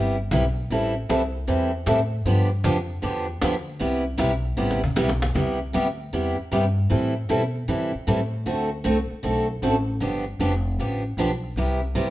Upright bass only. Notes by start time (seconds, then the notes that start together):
Already playing: G1
0.31 B1
0.70 A1
1.09 C2
1.48 E2
1.86 A2
2.25 G2
2.64 F2
3.03 E2
3.42 D2
3.80 C2
4.19 B1
4.58 A1
4.97 B1
5.35 C2
5.75 D2
6.13 E2
6.39 muted upright bass stroke
6.52 G2
6.91 A2
7.30 B2
7.68 C3
7.95 muted upright bass stroke
8.08 A2
8.47 D2
8.85 C2
9.11 muted upright bass stroke
9.24 B1
9.62 A1
10.01 G1
10.39 F1
10.78 A1
11.17 B1
11.56 C2
11.95 D2